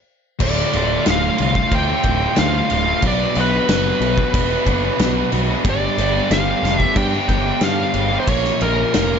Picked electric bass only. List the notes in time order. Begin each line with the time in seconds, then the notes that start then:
0.40 D1
0.75 D1
1.08 D1
1.40 C2
1.71 D2
2.04 D1
2.39 D2
2.72 D1
3.03 B1
3.37 B1
3.69 F#1
4.01 B1
4.34 E1
4.66 F#1
5.00 B1
5.33 B1
5.65 G1
5.98 G1
6.31 G1
6.63 F1
6.96 G2
7.28 G1
7.61 G2
7.94 G1
8.28 A#1
8.61 A#1
8.95 F1